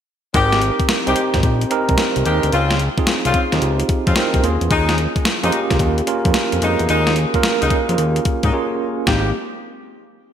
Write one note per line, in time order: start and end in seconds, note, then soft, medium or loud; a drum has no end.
0.34 0.71 G#1 loud
0.34 0.60 G#3 medium
0.34 0.80 C4 medium
0.34 0.60 C4 medium
0.34 0.80 D#4 medium
0.34 0.60 G4 loud
0.34 0.81 G4 medium
0.34 0.81 A#4 medium
0.34 kick loud
0.34 closed hi-hat medium
0.53 snare medium
0.53 closed hi-hat medium
0.61 closed hi-hat medium
0.80 kick medium
0.80 closed hi-hat soft
0.89 snare loud
0.89 closed hi-hat medium
1.07 1.15 C2 medium
1.07 1.22 G#3 medium
1.07 1.44 C4 medium
1.07 1.23 C4 medium
1.07 1.44 D#4 medium
1.07 1.23 G4 medium
1.07 1.45 G4 medium
1.07 1.45 C5 loud
1.07 closed hi-hat medium
1.16 closed hi-hat medium
1.34 1.42 G#1 medium
1.34 kick medium
1.34 snare medium
1.34 closed hi-hat soft
1.43 1.65 A#1 medium
1.43 kick loud
1.43 closed hi-hat medium
1.61 closed hi-hat soft
1.70 2.06 C4 medium
1.70 2.06 D#4 medium
1.70 2.06 G4 medium
1.70 2.06 A#4 loud
1.70 closed hi-hat medium
1.89 1.96 C2 medium
1.89 kick medium
1.89 closed hi-hat medium
1.98 snare medium
1.98 closed hi-hat medium
2.16 2.24 C2 loud
2.16 closed hi-hat soft
2.25 2.40 D#2 medium
2.25 2.46 G#3 medium
2.25 2.47 C4 medium
2.25 2.52 C4 medium
2.25 2.53 D#4 medium
2.25 2.47 G4 medium
2.25 2.53 G4 medium
2.25 2.53 A#4 medium
2.25 closed hi-hat medium
2.43 2.51 D2 medium
2.43 closed hi-hat medium
2.52 2.89 C#2 loud
2.52 2.78 C4 medium
2.52 2.78 C#4 medium
2.52 2.78 F4 medium
2.52 closed hi-hat medium
2.71 snare medium
2.71 closed hi-hat soft
2.79 closed hi-hat medium
2.98 3.29 C4 medium
2.98 3.29 D#4 medium
2.98 3.30 F4 medium
2.98 3.30 G#4 medium
2.98 kick medium
2.98 closed hi-hat soft
3.07 snare loud
3.07 closed hi-hat medium
3.25 3.33 C2 medium
3.25 3.41 C4 medium
3.25 3.41 C#4 medium
3.25 3.41 F4 medium
3.25 closed hi-hat medium
3.34 kick medium
3.34 closed hi-hat medium
3.52 3.60 D#2 medium
3.52 3.90 C4 medium
3.52 3.90 D#4 medium
3.52 3.90 F4 medium
3.52 3.90 G4 medium
3.52 snare medium
3.52 closed hi-hat medium
3.62 3.84 C#2 medium
3.62 closed hi-hat medium
3.80 closed hi-hat soft
3.89 kick loud
3.89 closed hi-hat medium
4.06 4.15 F2 medium
4.06 4.22 C4 medium
4.06 4.23 C#4 medium
4.06 4.23 F4 medium
4.06 kick loud
4.06 closed hi-hat soft
4.16 4.43 C4 medium
4.16 4.44 D#4 medium
4.16 4.43 F4 medium
4.16 4.44 A#4 loud
4.16 snare loud
4.16 closed hi-hat medium
4.34 4.42 C2 medium
4.34 kick medium
4.34 closed hi-hat soft
4.43 4.58 D#2 loud
4.43 5.22 A#3 medium
4.43 5.22 C#4 medium
4.43 5.22 F4 medium
4.43 5.22 G#4 medium
4.43 closed hi-hat medium
4.61 4.69 E2 loud
4.61 closed hi-hat soft
4.70 5.07 D#2 loud
4.70 4.96 G#3 medium
4.70 4.96 C#4 medium
4.70 4.97 D#4 medium
4.70 kick loud
4.70 closed hi-hat medium
4.89 snare medium
4.89 closed hi-hat soft
4.98 closed hi-hat medium
5.16 kick medium
5.16 closed hi-hat soft
5.25 snare loud
5.25 closed hi-hat medium
5.43 5.51 F2 medium
5.43 5.59 G#3 medium
5.43 5.81 A#3 medium
5.43 5.59 C#4 medium
5.43 5.81 C#4 medium
5.43 5.59 D#4 medium
5.43 5.81 F4 medium
5.43 5.81 G4 loud
5.43 closed hi-hat medium
5.52 closed hi-hat medium
5.71 5.78 C#2 medium
5.71 kick medium
5.71 snare medium
5.71 closed hi-hat soft
5.79 6.02 D#2 medium
5.79 kick loud
5.79 closed hi-hat medium
5.98 closed hi-hat soft
6.07 6.42 A#3 medium
6.07 6.42 C#4 medium
6.07 6.43 F4 medium
6.07 6.43 A#4 medium
6.07 closed hi-hat medium
6.25 6.33 F2 medium
6.25 kick medium
6.25 closed hi-hat medium
6.34 snare loud
6.34 closed hi-hat medium
6.52 6.60 F2 medium
6.52 closed hi-hat medium
6.61 6.76 F2 medium
6.61 6.83 G#3 medium
6.61 7.07 A#3 medium
6.61 6.83 C#4 medium
6.61 7.08 C#4 medium
6.61 6.83 D#4 medium
6.61 7.08 F4 medium
6.61 7.08 G#4 medium
6.61 closed hi-hat medium
6.79 6.87 E2 medium
6.79 closed hi-hat soft
6.89 7.26 D#2 loud
6.89 7.15 G#3 medium
6.89 7.15 C#4 medium
6.89 7.15 D#4 loud
6.89 closed hi-hat medium
7.07 snare medium
7.07 closed hi-hat medium
7.16 closed hi-hat medium
7.34 7.66 A#3 medium
7.34 7.66 C#4 medium
7.34 7.66 F4 medium
7.34 7.66 A#4 medium
7.34 kick medium
7.34 closed hi-hat soft
7.43 snare loud
7.43 closed hi-hat medium
7.61 7.69 C#2 medium
7.61 7.77 G#3 medium
7.61 7.77 C#4 medium
7.61 7.77 D#4 medium
7.61 closed hi-hat medium
7.70 kick medium
7.70 closed hi-hat medium
7.89 7.96 F2 medium
7.89 8.26 A#3 medium
7.89 8.27 C#4 medium
7.89 8.27 F4 medium
7.89 8.27 G#4 medium
7.89 closed hi-hat medium
7.98 8.20 D#2 medium
7.98 closed hi-hat medium
8.16 closed hi-hat soft
8.25 kick loud
8.25 closed hi-hat medium
8.43 8.51 G#2 medium
8.43 8.52 G#3 medium
8.43 8.52 C#4 medium
8.43 8.53 D#4 medium
8.43 kick medium
8.43 closed hi-hat medium
8.53 8.88 A#3 medium
8.53 8.88 C#4 medium
8.53 8.88 F4 medium
8.53 8.88 G#4 loud
9.06 9.33 G#1 loud
9.06 9.29 G#3 medium
9.06 9.33 A#3 medium
9.06 9.29 C4 medium
9.06 9.33 C4 medium
9.06 9.33 D#4 medium
9.06 9.29 G4 medium
9.06 9.33 G4 medium
9.06 kick loud
9.06 snare loud